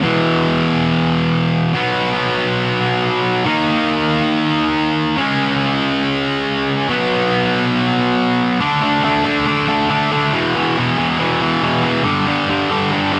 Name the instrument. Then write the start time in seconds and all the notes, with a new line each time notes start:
distorted electric guitar
0.02 E2 B2 E3
1.73 B2 F#3 B3
3.46 D#3 A#3 D#4
5.17 C#3 G#3 C#4
6.88 B2 F#3 B3
8.60 D3 A3 D4
8.82 D3 A3 D4
9.04 D3 A3 D4
9.24 D3 A3 D4
9.47 D3 A3 D4
9.68 D3 A3 D4
9.90 D3 A3 D4
10.11 D3 A3 D4
10.33 E2 B2 E3
10.56 E2 B2 E3
10.78 E2 B2 E3
10.98 E2 B2 E3
11.19 E2 B2 E3
11.41 E2 B2 E3
11.62 E2 B2 E3
11.83 E2 B2 E3
12.04 G2 D3 G3
12.27 G2 D3 G3
12.48 G2 D3 G3
12.70 G2 D3 G3
12.91 G2 D3 G3
13.12 G2 D3 G3